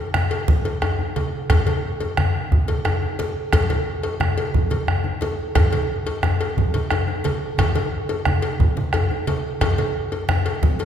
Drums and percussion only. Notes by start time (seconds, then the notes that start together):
0.14 bombo rim, djembe slap, high conga, djembe bass
0.31 cowbell
0.48 bombo low, low conga
0.65 cowbell, djembe slap
0.82 bombo rim, cowbell, djembe bass
0.99 bombo rim, djembe slap, djembe tone
1.16 cowbell, djembe slap, high conga
1.50 bombo rim, bombo low, cowbell, low conga, djembe bass
1.67 cowbell, djembe slap, high conga
1.84 bombo rim
2.00 cowbell, djembe slap, djembe tone
2.17 bombo rim, djembe slap, high conga, djembe bass
2.52 bombo low, low conga
2.68 cowbell, djembe slap, high conga
2.85 bombo rim, cowbell, djembe bass
3.02 bombo rim, djembe slap, djembe tone
3.19 cowbell, djembe slap, high conga
3.53 bombo rim, bombo low, cowbell, djembe slap, djembe bass, low conga
3.70 cowbell, djembe slap, high conga
3.87 bombo rim
4.03 bombo rim, cowbell, djembe tone
4.20 bombo rim, djembe slap, high conga, djembe bass
4.38 cowbell, high conga
4.54 bombo low, low conga
4.70 cowbell, djembe slap, high conga
4.87 bombo rim, djembe slap, djembe bass
5.04 djembe slap, djembe tone, high conga
5.21 cowbell, djembe slap, high conga
5.39 high conga
5.55 bombo rim, bombo low, cowbell, djembe bass, low conga
5.72 cowbell, djembe slap, high conga
5.90 bombo rim
6.06 cowbell, djembe slap, djembe tone
6.23 bombo rim, djembe slap, high conga, djembe bass
6.41 cowbell
6.57 bombo low, low conga
6.74 cowbell, djembe slap, high conga
6.91 bombo rim, cowbell, djembe bass
7.08 bombo rim, djembe slap, djembe tone
7.24 cowbell, djembe slap, high conga
7.58 bombo rim, bombo low, cowbell, djembe bass, low conga
7.75 cowbell, djembe slap, high conga
7.92 bombo rim
8.09 cowbell, djembe slap, djembe tone
8.25 bombo rim, high conga, djembe bass
8.42 cowbell
8.60 bombo low, low conga
8.77 djembe slap, high conga
8.93 bombo rim, cowbell, djembe bass
9.11 bombo rim, djembe slap, djembe tone
9.27 cowbell, djembe slap, high conga
9.61 bombo rim, bombo low, cowbell, low conga, djembe bass
9.78 cowbell, djembe slap, high conga
9.95 bombo rim
10.12 cowbell, djembe slap, djembe tone
10.29 bombo rim, djembe slap, high conga, djembe bass
10.46 cowbell
10.62 bombo low, low conga
10.79 cowbell, djembe slap